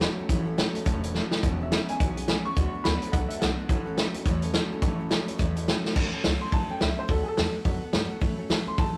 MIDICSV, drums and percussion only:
0, 0, Header, 1, 2, 480
1, 0, Start_track
1, 0, Key_signature, 3, "major"
1, 0, Tempo, 283019
1, 510, Time_signature, 4, 2, 24, 8
1, 15220, End_track
2, 0, Start_track
2, 0, Title_t, "Drums"
2, 16, Note_on_c, 9, 38, 117
2, 16, Note_on_c, 9, 42, 71
2, 185, Note_off_c, 9, 38, 0
2, 185, Note_off_c, 9, 42, 0
2, 494, Note_on_c, 9, 42, 67
2, 495, Note_on_c, 9, 36, 110
2, 664, Note_off_c, 9, 36, 0
2, 664, Note_off_c, 9, 42, 0
2, 984, Note_on_c, 9, 38, 127
2, 984, Note_on_c, 9, 42, 76
2, 1153, Note_off_c, 9, 38, 0
2, 1153, Note_off_c, 9, 42, 0
2, 1270, Note_on_c, 9, 42, 73
2, 1440, Note_off_c, 9, 42, 0
2, 1458, Note_on_c, 9, 42, 66
2, 1461, Note_on_c, 9, 36, 110
2, 1628, Note_off_c, 9, 42, 0
2, 1630, Note_off_c, 9, 36, 0
2, 1755, Note_on_c, 9, 42, 68
2, 1924, Note_off_c, 9, 42, 0
2, 1942, Note_on_c, 9, 38, 68
2, 2112, Note_off_c, 9, 38, 0
2, 2225, Note_on_c, 9, 38, 90
2, 2395, Note_off_c, 9, 38, 0
2, 2426, Note_on_c, 9, 42, 62
2, 2427, Note_on_c, 9, 36, 107
2, 2596, Note_off_c, 9, 42, 0
2, 2597, Note_off_c, 9, 36, 0
2, 2912, Note_on_c, 9, 38, 123
2, 2912, Note_on_c, 9, 42, 68
2, 3081, Note_off_c, 9, 38, 0
2, 3081, Note_off_c, 9, 42, 0
2, 3197, Note_on_c, 9, 42, 62
2, 3367, Note_off_c, 9, 42, 0
2, 3395, Note_on_c, 9, 42, 62
2, 3396, Note_on_c, 9, 36, 112
2, 3565, Note_off_c, 9, 36, 0
2, 3565, Note_off_c, 9, 42, 0
2, 3683, Note_on_c, 9, 42, 64
2, 3852, Note_off_c, 9, 42, 0
2, 3866, Note_on_c, 9, 38, 116
2, 3866, Note_on_c, 9, 42, 67
2, 4035, Note_off_c, 9, 38, 0
2, 4035, Note_off_c, 9, 42, 0
2, 4350, Note_on_c, 9, 42, 58
2, 4353, Note_on_c, 9, 36, 114
2, 4520, Note_off_c, 9, 42, 0
2, 4523, Note_off_c, 9, 36, 0
2, 4832, Note_on_c, 9, 38, 127
2, 4832, Note_on_c, 9, 42, 69
2, 5002, Note_off_c, 9, 38, 0
2, 5002, Note_off_c, 9, 42, 0
2, 5118, Note_on_c, 9, 42, 70
2, 5288, Note_off_c, 9, 42, 0
2, 5312, Note_on_c, 9, 36, 116
2, 5313, Note_on_c, 9, 42, 66
2, 5482, Note_off_c, 9, 36, 0
2, 5483, Note_off_c, 9, 42, 0
2, 5602, Note_on_c, 9, 42, 66
2, 5772, Note_off_c, 9, 42, 0
2, 5793, Note_on_c, 9, 38, 122
2, 5793, Note_on_c, 9, 42, 69
2, 5962, Note_off_c, 9, 38, 0
2, 5962, Note_off_c, 9, 42, 0
2, 6260, Note_on_c, 9, 42, 64
2, 6263, Note_on_c, 9, 36, 111
2, 6430, Note_off_c, 9, 42, 0
2, 6432, Note_off_c, 9, 36, 0
2, 6741, Note_on_c, 9, 38, 127
2, 6741, Note_on_c, 9, 42, 74
2, 6911, Note_off_c, 9, 38, 0
2, 6911, Note_off_c, 9, 42, 0
2, 7024, Note_on_c, 9, 42, 69
2, 7194, Note_off_c, 9, 42, 0
2, 7216, Note_on_c, 9, 42, 61
2, 7218, Note_on_c, 9, 36, 111
2, 7386, Note_off_c, 9, 42, 0
2, 7388, Note_off_c, 9, 36, 0
2, 7496, Note_on_c, 9, 42, 60
2, 7666, Note_off_c, 9, 42, 0
2, 7693, Note_on_c, 9, 38, 127
2, 7693, Note_on_c, 9, 42, 66
2, 7863, Note_off_c, 9, 38, 0
2, 7863, Note_off_c, 9, 42, 0
2, 8173, Note_on_c, 9, 42, 61
2, 8177, Note_on_c, 9, 36, 120
2, 8342, Note_off_c, 9, 42, 0
2, 8347, Note_off_c, 9, 36, 0
2, 8661, Note_on_c, 9, 38, 127
2, 8661, Note_on_c, 9, 42, 67
2, 8830, Note_off_c, 9, 38, 0
2, 8830, Note_off_c, 9, 42, 0
2, 8955, Note_on_c, 9, 42, 68
2, 9124, Note_off_c, 9, 42, 0
2, 9147, Note_on_c, 9, 36, 108
2, 9148, Note_on_c, 9, 42, 67
2, 9317, Note_off_c, 9, 36, 0
2, 9318, Note_off_c, 9, 42, 0
2, 9437, Note_on_c, 9, 42, 65
2, 9607, Note_off_c, 9, 42, 0
2, 9634, Note_on_c, 9, 38, 114
2, 9634, Note_on_c, 9, 42, 72
2, 9803, Note_off_c, 9, 38, 0
2, 9803, Note_off_c, 9, 42, 0
2, 9928, Note_on_c, 9, 38, 66
2, 10097, Note_off_c, 9, 38, 0
2, 10106, Note_on_c, 9, 49, 107
2, 10107, Note_on_c, 9, 36, 109
2, 10275, Note_off_c, 9, 49, 0
2, 10277, Note_off_c, 9, 36, 0
2, 10580, Note_on_c, 9, 38, 127
2, 10580, Note_on_c, 9, 46, 58
2, 10750, Note_off_c, 9, 38, 0
2, 10750, Note_off_c, 9, 46, 0
2, 11058, Note_on_c, 9, 46, 48
2, 11063, Note_on_c, 9, 36, 108
2, 11228, Note_off_c, 9, 46, 0
2, 11233, Note_off_c, 9, 36, 0
2, 11544, Note_on_c, 9, 38, 121
2, 11544, Note_on_c, 9, 46, 51
2, 11713, Note_off_c, 9, 38, 0
2, 11713, Note_off_c, 9, 46, 0
2, 12021, Note_on_c, 9, 46, 48
2, 12022, Note_on_c, 9, 36, 112
2, 12191, Note_off_c, 9, 46, 0
2, 12192, Note_off_c, 9, 36, 0
2, 12504, Note_on_c, 9, 38, 123
2, 12504, Note_on_c, 9, 46, 61
2, 12674, Note_off_c, 9, 38, 0
2, 12674, Note_off_c, 9, 46, 0
2, 12970, Note_on_c, 9, 46, 56
2, 12976, Note_on_c, 9, 36, 110
2, 13139, Note_off_c, 9, 46, 0
2, 13146, Note_off_c, 9, 36, 0
2, 13449, Note_on_c, 9, 38, 125
2, 13449, Note_on_c, 9, 46, 61
2, 13619, Note_off_c, 9, 38, 0
2, 13619, Note_off_c, 9, 46, 0
2, 13929, Note_on_c, 9, 46, 54
2, 13933, Note_on_c, 9, 36, 109
2, 14099, Note_off_c, 9, 46, 0
2, 14103, Note_off_c, 9, 36, 0
2, 14416, Note_on_c, 9, 38, 127
2, 14416, Note_on_c, 9, 46, 63
2, 14585, Note_off_c, 9, 38, 0
2, 14585, Note_off_c, 9, 46, 0
2, 14894, Note_on_c, 9, 36, 122
2, 14897, Note_on_c, 9, 46, 51
2, 15064, Note_off_c, 9, 36, 0
2, 15066, Note_off_c, 9, 46, 0
2, 15220, End_track
0, 0, End_of_file